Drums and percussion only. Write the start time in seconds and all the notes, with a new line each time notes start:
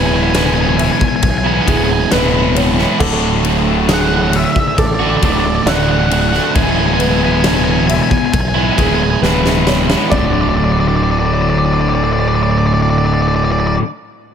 0.35 snare, ride
0.79 ride
1.01 kick
1.22 kick, ride
1.68 kick, ride
2.12 snare, ride
2.56 ride
2.79 snare
3.00 kick, crash
3.45 ride
3.89 snare, ride
4.33 ride
4.56 kick
4.78 kick, ride
5.22 kick, ride
5.67 snare, ride
6.11 ride
6.34 snare
6.55 kick, ride
7.00 ride
7.44 snare, ride
7.89 ride
8.11 kick
8.34 kick, ride
8.78 kick, ride
9.24 snare
9.46 snare
9.67 snare
9.90 snare
10.12 kick, floor tom